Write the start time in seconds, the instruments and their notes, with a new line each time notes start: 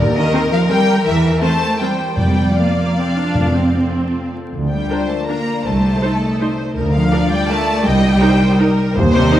Already playing: double bass section D#2, harp D#3 A#3 G4 A#4 G5, violin section A#4
0.06 harp D#4
0.14 cello section D#3, harp A#3, violin section D#5
0.24 harp G4
0.33 viola section C4 A#4, harp C5
0.43 harp A#4
0.51 cello section F3, violin section F5, harp G5
0.61 harp C6
0.69 cello section G3, viola section C4 A#4, violin section G5
0.79 harp A#4
0.88 harp C5
0.97 harp G4
1.04 double bass section E2, cello section E3, harp E3, violin section E5
1.14 harp E4
1.24 harp A#3
1.32 harp G4
1.41 cello section A3, viola section C4 A#4, violin section C5 A5, harp C5
1.52 harp A#4
1.61 harp G5
1.72 harp C6
1.79 cello section G3, viola section C4 A#4, violin section C5 G5, harp G5
1.91 harp A#4
2.00 harp C5
2.09 harp G4
2.16 timpani F2, double bass section F2, harp F3, cello section G3, violin section D5 G5
2.28 harp A#3
2.37 harp F4
2.47 harp D5
2.56 cello section F3, viola section A#3, harp A#4, violin section F5
2.68 harp F5
2.78 harp D6
2.88 harp A#5
2.98 viola section C4, harp D6
3.08 harp F5
3.16 viola section D4, harp A#4
3.28 harp D5
3.34 timpani F2, double bass section F2, harp F3
3.46 harp A3
3.54 viola section C4, harp F4
3.65 harp C5
3.75 harp A4
3.85 harp F5
3.95 harp C6
4.05 harp A5
4.16 harp C6
4.25 harp F5
4.35 harp A4
4.44 harp C5
4.52 double bass section D2, harp D3
4.62 harp D4
4.70 cello section G3, harp A#3, violin section G5
4.80 harp F4
4.89 viola section D4 A#4, violin section C5, harp D5
5.00 harp A#4
5.09 cello section A3, harp F5, violin section A5
5.20 harp D6
5.28 cello section A#3, viola section D4 A#4, violin section A#4 A#5, harp F5
5.38 harp A#4
5.47 harp D5
5.57 harp F4
5.64 double bass section C2, harp C3, cello section A3, violin section C5 A5
5.73 harp A3
5.82 harp C4
5.92 harp D#4
6.01 viola section D#4 C5, violin section A4, harp D#5
6.12 harp C5
6.21 harp D#5
6.31 harp D#6
6.39 viola section D#4 C5, violin section C5, harp D#5
6.49 harp C5
6.58 harp D#5
6.67 harp D#4
6.74 double bass section D2, harp D3, violin section A#4
6.84 harp D4
6.93 cello section F3, harp A#3, violin section F5
7.02 harp F4
7.09 viola section D4 A#4, violin section D5, harp D5
7.22 harp A#4
7.31 cello section G3, harp F5, violin section G5
7.41 harp D6
7.49 cello section A3, viola section D4 A#4, harp F5, violin section A5
7.59 harp A#4
7.68 harp D5
7.77 harp F4
7.84 double bass section C2, harp C3, cello section G3, violin section D#5 G5
7.95 harp G3
8.04 harp A#3
8.13 harp D#4
8.21 viola section D#4 A#4, violin section C5, harp D#5
8.42 harp D#5
8.51 harp D#6
8.59 viola section D#4 A#4, violin section A#4, harp D#5
8.69 harp A#4
8.78 harp D#5
8.86 harp D#4
8.94 double bass section D#2, harp D#3, violin section C5
9.04 harp D#4
9.12 cello section C3, harp G3, violin section C5
9.21 harp G4
9.31 viola section D#4 G4, harp C5, violin section D#5